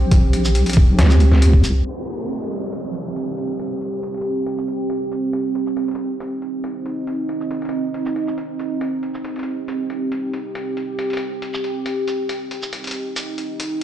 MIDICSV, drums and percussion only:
0, 0, Header, 1, 2, 480
1, 0, Start_track
1, 0, Key_signature, -3, "minor"
1, 0, Tempo, 434783
1, 129, Time_signature, 4, 2, 24, 8
1, 15273, End_track
2, 0, Start_track
2, 0, Title_t, "Drums"
2, 126, Note_on_c, 9, 42, 81
2, 129, Note_on_c, 9, 36, 112
2, 237, Note_off_c, 9, 42, 0
2, 239, Note_off_c, 9, 36, 0
2, 367, Note_on_c, 9, 42, 55
2, 477, Note_off_c, 9, 42, 0
2, 492, Note_on_c, 9, 82, 64
2, 602, Note_off_c, 9, 82, 0
2, 607, Note_on_c, 9, 42, 79
2, 717, Note_off_c, 9, 42, 0
2, 731, Note_on_c, 9, 42, 51
2, 767, Note_off_c, 9, 42, 0
2, 767, Note_on_c, 9, 42, 64
2, 809, Note_off_c, 9, 42, 0
2, 809, Note_on_c, 9, 42, 81
2, 849, Note_on_c, 9, 36, 98
2, 919, Note_off_c, 9, 42, 0
2, 959, Note_off_c, 9, 36, 0
2, 1089, Note_on_c, 9, 38, 114
2, 1089, Note_on_c, 9, 42, 80
2, 1199, Note_off_c, 9, 38, 0
2, 1199, Note_off_c, 9, 42, 0
2, 1213, Note_on_c, 9, 82, 81
2, 1323, Note_off_c, 9, 82, 0
2, 1327, Note_on_c, 9, 42, 52
2, 1438, Note_off_c, 9, 42, 0
2, 1452, Note_on_c, 9, 38, 34
2, 1563, Note_off_c, 9, 38, 0
2, 1568, Note_on_c, 9, 42, 78
2, 1678, Note_off_c, 9, 42, 0
2, 1694, Note_on_c, 9, 36, 61
2, 1805, Note_off_c, 9, 36, 0
2, 1808, Note_on_c, 9, 42, 56
2, 1808, Note_on_c, 9, 82, 57
2, 1918, Note_off_c, 9, 42, 0
2, 1918, Note_off_c, 9, 82, 0
2, 2048, Note_on_c, 9, 42, 76
2, 2158, Note_off_c, 9, 42, 0
2, 2288, Note_on_c, 9, 42, 48
2, 2398, Note_off_c, 9, 42, 0
2, 2413, Note_on_c, 9, 82, 56
2, 2523, Note_off_c, 9, 82, 0
2, 2528, Note_on_c, 9, 42, 71
2, 2639, Note_off_c, 9, 42, 0
2, 2654, Note_on_c, 9, 42, 45
2, 2688, Note_off_c, 9, 42, 0
2, 2688, Note_on_c, 9, 42, 61
2, 2729, Note_off_c, 9, 42, 0
2, 2729, Note_on_c, 9, 42, 77
2, 2840, Note_off_c, 9, 42, 0
2, 3010, Note_on_c, 9, 42, 72
2, 3010, Note_on_c, 9, 82, 53
2, 3120, Note_off_c, 9, 42, 0
2, 3120, Note_off_c, 9, 82, 0
2, 3250, Note_on_c, 9, 42, 47
2, 3360, Note_off_c, 9, 42, 0
2, 3490, Note_on_c, 9, 42, 70
2, 3601, Note_off_c, 9, 42, 0
2, 3729, Note_on_c, 9, 42, 48
2, 3840, Note_off_c, 9, 42, 0
2, 3969, Note_on_c, 9, 42, 76
2, 4079, Note_off_c, 9, 42, 0
2, 4209, Note_on_c, 9, 42, 51
2, 4320, Note_off_c, 9, 42, 0
2, 4448, Note_on_c, 9, 42, 72
2, 4559, Note_off_c, 9, 42, 0
2, 4574, Note_on_c, 9, 42, 45
2, 4609, Note_off_c, 9, 42, 0
2, 4609, Note_on_c, 9, 42, 61
2, 4650, Note_off_c, 9, 42, 0
2, 4650, Note_on_c, 9, 42, 73
2, 4761, Note_off_c, 9, 42, 0
2, 4929, Note_on_c, 9, 42, 72
2, 5039, Note_off_c, 9, 42, 0
2, 5053, Note_on_c, 9, 82, 68
2, 5163, Note_off_c, 9, 82, 0
2, 5167, Note_on_c, 9, 42, 46
2, 5277, Note_off_c, 9, 42, 0
2, 5407, Note_on_c, 9, 42, 71
2, 5517, Note_off_c, 9, 42, 0
2, 5648, Note_on_c, 9, 42, 53
2, 5648, Note_on_c, 9, 82, 48
2, 5758, Note_off_c, 9, 42, 0
2, 5758, Note_off_c, 9, 82, 0
2, 5887, Note_on_c, 9, 42, 73
2, 5997, Note_off_c, 9, 42, 0
2, 6128, Note_on_c, 9, 42, 49
2, 6238, Note_off_c, 9, 42, 0
2, 6253, Note_on_c, 9, 82, 52
2, 6363, Note_off_c, 9, 82, 0
2, 6367, Note_on_c, 9, 42, 69
2, 6477, Note_off_c, 9, 42, 0
2, 6493, Note_on_c, 9, 42, 46
2, 6528, Note_off_c, 9, 42, 0
2, 6528, Note_on_c, 9, 42, 58
2, 6569, Note_off_c, 9, 42, 0
2, 6569, Note_on_c, 9, 42, 75
2, 6679, Note_off_c, 9, 42, 0
2, 6848, Note_on_c, 9, 42, 73
2, 6848, Note_on_c, 9, 82, 51
2, 6959, Note_off_c, 9, 42, 0
2, 6959, Note_off_c, 9, 82, 0
2, 7088, Note_on_c, 9, 42, 47
2, 7199, Note_off_c, 9, 42, 0
2, 7329, Note_on_c, 9, 42, 69
2, 7439, Note_off_c, 9, 42, 0
2, 7569, Note_on_c, 9, 42, 51
2, 7679, Note_off_c, 9, 42, 0
2, 7808, Note_on_c, 9, 42, 74
2, 7919, Note_off_c, 9, 42, 0
2, 8049, Note_on_c, 9, 42, 47
2, 8159, Note_off_c, 9, 42, 0
2, 8172, Note_on_c, 9, 82, 55
2, 8283, Note_off_c, 9, 82, 0
2, 8287, Note_on_c, 9, 42, 66
2, 8397, Note_off_c, 9, 42, 0
2, 8411, Note_on_c, 9, 42, 43
2, 8447, Note_off_c, 9, 42, 0
2, 8447, Note_on_c, 9, 42, 59
2, 8489, Note_off_c, 9, 42, 0
2, 8489, Note_on_c, 9, 42, 74
2, 8599, Note_off_c, 9, 42, 0
2, 8768, Note_on_c, 9, 42, 69
2, 8879, Note_off_c, 9, 42, 0
2, 8893, Note_on_c, 9, 82, 69
2, 9003, Note_off_c, 9, 82, 0
2, 9009, Note_on_c, 9, 42, 46
2, 9119, Note_off_c, 9, 42, 0
2, 9133, Note_on_c, 9, 82, 52
2, 9244, Note_off_c, 9, 82, 0
2, 9248, Note_on_c, 9, 42, 67
2, 9359, Note_off_c, 9, 42, 0
2, 9488, Note_on_c, 9, 42, 47
2, 9488, Note_on_c, 9, 82, 47
2, 9598, Note_off_c, 9, 42, 0
2, 9598, Note_off_c, 9, 82, 0
2, 9727, Note_on_c, 9, 42, 67
2, 9838, Note_off_c, 9, 42, 0
2, 9968, Note_on_c, 9, 42, 45
2, 10078, Note_off_c, 9, 42, 0
2, 10093, Note_on_c, 9, 82, 56
2, 10203, Note_off_c, 9, 82, 0
2, 10206, Note_on_c, 9, 42, 67
2, 10317, Note_off_c, 9, 42, 0
2, 10333, Note_on_c, 9, 42, 42
2, 10367, Note_off_c, 9, 42, 0
2, 10367, Note_on_c, 9, 42, 56
2, 10411, Note_off_c, 9, 42, 0
2, 10411, Note_on_c, 9, 42, 71
2, 10521, Note_off_c, 9, 42, 0
2, 10688, Note_on_c, 9, 42, 65
2, 10688, Note_on_c, 9, 82, 57
2, 10799, Note_off_c, 9, 42, 0
2, 10799, Note_off_c, 9, 82, 0
2, 10929, Note_on_c, 9, 42, 44
2, 11039, Note_off_c, 9, 42, 0
2, 11170, Note_on_c, 9, 42, 66
2, 11280, Note_off_c, 9, 42, 0
2, 11409, Note_on_c, 9, 42, 47
2, 11520, Note_off_c, 9, 42, 0
2, 11649, Note_on_c, 9, 42, 69
2, 11760, Note_off_c, 9, 42, 0
2, 11889, Note_on_c, 9, 42, 46
2, 12000, Note_off_c, 9, 42, 0
2, 12129, Note_on_c, 9, 42, 68
2, 12240, Note_off_c, 9, 42, 0
2, 12256, Note_on_c, 9, 42, 43
2, 12290, Note_off_c, 9, 42, 0
2, 12290, Note_on_c, 9, 42, 57
2, 12332, Note_off_c, 9, 42, 0
2, 12332, Note_on_c, 9, 42, 72
2, 12442, Note_off_c, 9, 42, 0
2, 12609, Note_on_c, 9, 42, 68
2, 12720, Note_off_c, 9, 42, 0
2, 12735, Note_on_c, 9, 82, 76
2, 12845, Note_off_c, 9, 82, 0
2, 12851, Note_on_c, 9, 42, 44
2, 12961, Note_off_c, 9, 42, 0
2, 13090, Note_on_c, 9, 42, 64
2, 13201, Note_off_c, 9, 42, 0
2, 13331, Note_on_c, 9, 42, 46
2, 13331, Note_on_c, 9, 82, 52
2, 13442, Note_off_c, 9, 42, 0
2, 13442, Note_off_c, 9, 82, 0
2, 13571, Note_on_c, 9, 42, 70
2, 13681, Note_off_c, 9, 42, 0
2, 13811, Note_on_c, 9, 42, 47
2, 13922, Note_off_c, 9, 42, 0
2, 13935, Note_on_c, 9, 82, 59
2, 14046, Note_off_c, 9, 82, 0
2, 14050, Note_on_c, 9, 42, 69
2, 14161, Note_off_c, 9, 42, 0
2, 14177, Note_on_c, 9, 42, 44
2, 14211, Note_off_c, 9, 42, 0
2, 14211, Note_on_c, 9, 42, 58
2, 14254, Note_off_c, 9, 42, 0
2, 14254, Note_on_c, 9, 42, 70
2, 14364, Note_off_c, 9, 42, 0
2, 14531, Note_on_c, 9, 42, 69
2, 14531, Note_on_c, 9, 82, 59
2, 14642, Note_off_c, 9, 42, 0
2, 14642, Note_off_c, 9, 82, 0
2, 14771, Note_on_c, 9, 42, 46
2, 14881, Note_off_c, 9, 42, 0
2, 15011, Note_on_c, 9, 42, 69
2, 15121, Note_off_c, 9, 42, 0
2, 15273, End_track
0, 0, End_of_file